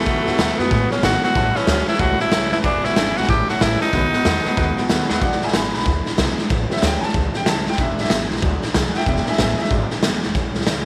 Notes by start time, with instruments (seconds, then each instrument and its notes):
Already playing: tenor saxophone A3
0.00 snare
0.06 upright bass B1, steel-string acoustic guitar B2 D#3 A3 B3 F#4, clean electric guitar B2 F#3, upright piano B4 D#5 F#5, kick, snare
0.25 upright bass D#2, clean electric guitar B2 F#3, steel-string acoustic guitar A3 B3 F#4, upright piano B4 D#5 F#5, snare
0.38 upright bass D#2, steel-string acoustic guitar B2 D#3 A3 B3 F#4, clean electric guitar B2 G#3, upright piano B4 D#5 F#5, snare, hi-hat pedal
0.58 upright bass F#2, clean electric guitar B2 F#3, steel-string acoustic guitar A3 B3 F#4, tenor saxophone B3, upright piano B4 D#5 F#5, snare
0.70 upright bass A2, clean electric guitar B2 G#3, steel-string acoustic guitar D#3 A3 B3 F#4, upright piano B4 D#5 F#5, kick, snare
0.90 clean electric guitar B2 G#3, steel-string acoustic guitar A3 B3 F#4, tenor saxophone C#4, upright piano B4 D#5 F#5, muted upright bass stroke, snare
1.02 upright bass G#1, steel-string acoustic guitar B2 D#3 A3 B3 F#4, clean electric guitar B2 F#3, tenor saxophone F#4, upright piano B4 D#5 F#5, snare, hi-hat pedal
1.22 clean electric guitar B2 F#3, steel-string acoustic guitar A3 B3 F#4, tenor saxophone F#4, upright piano B4 D#5 F#5, snare
1.34 upright bass A1, steel-string acoustic guitar A2 E3 G3 C#4 E4, clean electric guitar A2 E3, upright piano C#5 E5 A5, kick, snare
1.54 clean electric guitar A2 E3, steel-string acoustic guitar G3 C#4 E4, tenor saxophone C#4, upright piano C#5 E5 A5, snare
1.66 upright bass D2, steel-string acoustic guitar A2 E3 G3 C#4 E4, clean electric guitar A2 F#3, upright piano C#5 E5 A5, snare, hi-hat pedal
1.86 clean electric guitar A2 E3, steel-string acoustic guitar G3 C#4 E4, tenor saxophone E4, upright piano C#5 E5 A5, snare
1.94 snare
1.98 upright bass C#2, clean electric guitar A2 F#3, steel-string acoustic guitar E3 G3 C#4 E4, tenor saxophone F#4, upright piano C#5 E5 A5, kick, snare
2.19 clean electric guitar A2 F#3, steel-string acoustic guitar G3 C#4 E4, tenor saxophone E4, upright piano C#5 E5 A5, snare
2.31 upright bass C#2, steel-string acoustic guitar A2 E3 G3 C#4 E4, clean electric guitar A2 E3, upright piano C#5 E5 A5, snare, hi-hat pedal
2.51 upright bass F#1, clean electric guitar A2 E3, steel-string acoustic guitar G3 C#4 E4, tenor saxophone E4, upright piano C#5 E5 A5, snare
2.63 upright bass E1, steel-string acoustic guitar E2 B2 E3 G#3 D4 E4, clean electric guitar E2 B2, tenor saxophone D4, upright piano B4 E5 G#5, kick, snare
2.83 upright bass G#1, clean electric guitar E2 B2, steel-string acoustic guitar E3 G#3 D4 E4, tenor saxophone E4, upright piano B4 E5 G#5, snare
2.95 upright bass G#1, clean electric guitar E2 C#3, steel-string acoustic guitar E2 B2 E3 G#3 D4 E4, upright piano B4 G#5, snare, hi-hat pedal
3.15 upright bass B1, clean electric guitar E2 B2, steel-string acoustic guitar E3 G#3 D4 E4, tenor saxophone F#4, upright piano B4 E5 G#5, snare
3.23 snare
3.27 upright bass A1, clean electric guitar A2 E3, steel-string acoustic guitar E3 G3 C#4 E4, tenor saxophone G4, upright piano C#5 E5 A5, kick, snare
3.48 clean electric guitar A2 F#3, steel-string acoustic guitar G3 C#4 E4, tenor saxophone F#4, upright piano C#5 E5 A5, muted upright bass stroke, snare
3.60 upright bass A1, steel-string acoustic guitar A2 E3 G3 C#4 E4, clean electric guitar A2 E3, tenor saxophone E4, upright piano C#5 E5 A5, snare, hi-hat pedal
3.80 clean electric guitar A2 E3, steel-string acoustic guitar G3 C#4 E4, tenor saxophone D#4, upright piano C#5 E5 A5, snare
3.92 upright bass B1, steel-string acoustic guitar B2 D#3 A3 B3 F#4, clean electric guitar B2 F#3, upright piano B4 D#5 F#5, kick, snare
4.12 clean electric guitar B2 F#3, steel-string acoustic guitar A3 B3 F#4, upright piano B4 D#5 F#5, muted upright bass stroke, snare
4.24 upright bass E2, steel-string acoustic guitar B2 D#3 A3 B3 F#4, clean electric guitar B2 G#3, upright piano B4 D#5 F#5, snare, hi-hat pedal
4.44 clean electric guitar B2 F#3, steel-string acoustic guitar A3 B3 F#4, upright piano B4 D#5 F#5, muted upright bass stroke, snare
4.56 upright bass D#2, clean electric guitar B2 G#3, steel-string acoustic guitar D#3 A3 B3 F#4, upright piano B4 D#5 F#5, kick, snare
4.77 clean electric guitar B2 G#3, steel-string acoustic guitar A3 B3 F#4, upright piano B4 D#5 F#5 B5, muted upright bass stroke, snare
4.89 upright bass D#2, steel-string acoustic guitar B2 D#3 A3 B3 F#4, clean electric guitar B2 F#3, upright piano B4 D#5 F#5, snare, hi-hat pedal
5.09 upright bass D#2, clean electric guitar B2 F#3, steel-string acoustic guitar A3 B3 F#4, upright piano B4 D#5 F#5, snare
5.19 upright bass E1, steel-string acoustic guitar E2 B2 E3 G#3 D4 E4, upright piano F#3 G#3 D4 D5 F5, kick, snare
5.24 upright piano F#5
5.32 snare
5.41 upright bass G#1, steel-string acoustic guitar E3 G#3 D4 E4, upright piano E5 G#5, snare
5.48 snare
5.54 upright bass G#1, steel-string acoustic guitar E2 B2 E3 G#3 D4 E4, upright piano G#5 B5, snare, hi-hat pedal
5.71 upright bass B1, steel-string acoustic guitar G#3 D4 E4, upright piano A#5, snare
5.76 steel-string acoustic guitar E3, upright piano B5
5.80 snare
5.85 upright bass D2, steel-string acoustic guitar E3 G#3 D4 E4, kick, snare
6.05 steel-string acoustic guitar E3 G#3 D4 E4, snare
6.17 upright bass B1, steel-string acoustic guitar E2 B2 E3 G#3 D4 E4, snare, hi-hat pedal
6.37 steel-string acoustic guitar E3 G#3 D4 E4, muted upright bass stroke, snare
6.50 upright bass A1, steel-string acoustic guitar A2 E3 G3 C#4 E4, kick, snare
6.70 upright piano G3 B3 C#4 E5, steel-string acoustic guitar G3 C#4 E4, muted upright bass stroke, snare
6.77 snare
6.82 upright bass D2, steel-string acoustic guitar A2 E3 G3 C#4 E4, upright piano G5, snare, hi-hat pedal
7.00 steel-string acoustic guitar G3 C#4 E4, upright piano G#5, muted upright bass stroke, snare
7.04 upright piano A5
7.09 snare
7.14 upright bass C#2, steel-string acoustic guitar E3 G3 C#4 E4, kick, snare
7.34 steel-string acoustic guitar G3 C#4 E4, upright piano G5, muted upright bass stroke, snare
7.46 upright bass C#2, steel-string acoustic guitar A2 E3 G3 C#4 E4, upright piano A5, snare, hi-hat pedal
7.65 upright bass F#1, steel-string acoustic guitar G3 C#4 E4, upright piano G5, snare
7.72 snare
7.78 upright bass E1, steel-string acoustic guitar E2 B2 E3 G#3 D4 E4, upright piano F#3 G#3 D4 E5, kick, snare
7.97 upright bass G#1, steel-string acoustic guitar E3 G#3 D4 E4, upright piano E5, snare
8.04 snare
8.10 upright bass G#1, steel-string acoustic guitar E2 B2 E3 G#3 D4 E4, snare, hi-hat pedal
8.30 upright bass B1, steel-string acoustic guitar E3 G#3 D4 E4, snare
8.36 snare
8.42 upright bass D2, steel-string acoustic guitar E3 G#3 D4 E4, upright piano F#3 G#3 D4, kick, snare
8.62 steel-string acoustic guitar E3 G#3 D4 E4, snare
8.74 upright bass B1, steel-string acoustic guitar E2 B2 E3 G#3 D4 E4, snare, hi-hat pedal
8.92 steel-string acoustic guitar D4 E4, upright piano E5 F#5, muted upright bass stroke, snare
8.96 steel-string acoustic guitar E3 G#3, upright piano G5, snare
9.06 upright bass E1, steel-string acoustic guitar E2 B2 E3 G#3 D4 E4, upright piano F#3 G#3 D4 E5 G5, kick, snare
9.17 snare
9.26 steel-string acoustic guitar E3 G#3 D4 E4, upright piano G#4 E5, snare
9.33 snare
9.38 upright bass A1, steel-string acoustic guitar E2 B2 E3 G#3 D4 E4, upright piano G#4 E5, snare, hi-hat pedal
9.57 steel-string acoustic guitar E3 G#3 D4 E4, upright piano D#5, snare
9.62 upright piano E5, snare
9.70 upright bass G#1, steel-string acoustic guitar E3 G#3 D4 E4, upright piano F#3 G#3 D4, kick, snare
9.90 steel-string acoustic guitar E3 G#3 D4 E4, muted upright bass stroke, snare
10.03 upright bass G#1, steel-string acoustic guitar E2 B2 E3 G#3 D4 E4, snare, hi-hat pedal
10.23 upright bass E1, steel-string acoustic guitar E3 G#3 D4 E4, snare
10.35 upright bass A1, steel-string acoustic guitar A2 E3 G3 C#4 E4, kick, snare
10.54 upright bass C#2, steel-string acoustic guitar G3 C#4 E4, snare
10.61 snare
10.66 upright bass C#2, steel-string acoustic guitar A2 E3 G3 C#4 E4, snare, hi-hat pedal